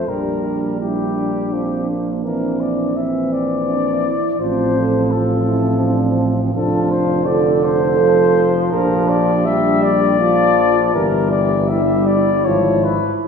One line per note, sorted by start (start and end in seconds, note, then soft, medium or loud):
0.00 0.10 C5 medium
0.07 4.09 A#1 soft
0.07 0.80 G3 soft
0.07 0.79 D4 soft
0.07 0.43 G4 soft
0.07 0.80 A#4 medium
0.44 0.80 D4 soft
0.79 1.55 G3 soft
0.79 2.27 D4 soft
0.79 1.16 E4 soft
0.79 1.87 G4 soft
1.16 1.52 D4 soft
1.53 2.24 F3 soft
1.53 1.89 C4 soft
1.89 2.25 A#3 soft
2.24 2.95 E3 soft
2.24 2.96 C4 soft
2.24 2.97 D4 medium
2.24 2.62 A#4 soft
2.60 2.98 D5 medium
2.96 4.10 E3 soft
2.96 4.11 C4 soft
2.96 3.68 C4 soft
2.96 3.34 E5 medium
3.33 4.39 D5 medium
3.68 4.04 D4 soft
4.04 4.40 E4 soft
4.39 6.51 A1 medium
4.39 5.08 F3 soft
4.39 5.08 C4 soft
4.39 4.75 F4 medium
4.39 5.13 C5 medium
4.77 5.12 A4 medium
5.11 6.52 F3 soft
5.11 6.52 C4 medium
5.11 5.47 F4 medium
5.11 6.18 A4 medium
5.48 5.83 E4 medium
5.83 6.18 D4 medium
6.18 6.55 C4 medium
6.54 8.69 F1 medium
6.54 7.29 F3 soft
6.54 7.29 D4 medium
6.54 7.25 F4 medium
6.54 6.93 A4 medium
6.91 7.27 C5 medium
7.26 8.01 D3 medium
7.26 7.99 F4 medium
7.26 8.55 A4 medium
7.26 7.65 D5 medium
7.64 8.71 C5 medium
8.00 9.48 F3 medium
8.00 8.74 F4 medium
8.71 10.91 A#1 medium
8.71 9.46 D4 medium
8.71 10.18 G4 medium
8.71 9.10 A#4 medium
9.09 9.47 D5 medium
9.45 10.19 G3 medium
9.45 10.22 D4 medium
9.45 9.84 E5 medium
9.83 10.93 D5 medium
10.20 10.96 F3 medium
10.20 10.95 F4 medium
10.94 12.48 G1 medium
10.94 11.71 E3 medium
10.94 11.68 G4 medium
10.94 11.72 G4 medium
10.94 11.31 A#4 medium
11.32 11.70 D5 medium
11.68 12.48 G3 soft
11.68 12.49 E4 medium
11.68 13.27 E4 medium
11.68 12.08 E5 medium
12.07 12.46 D5 medium
12.44 12.99 G#1 medium
12.44 12.99 F3 soft
12.44 12.99 F4 soft
12.44 12.86 C#5 medium
12.84 13.13 B4 medium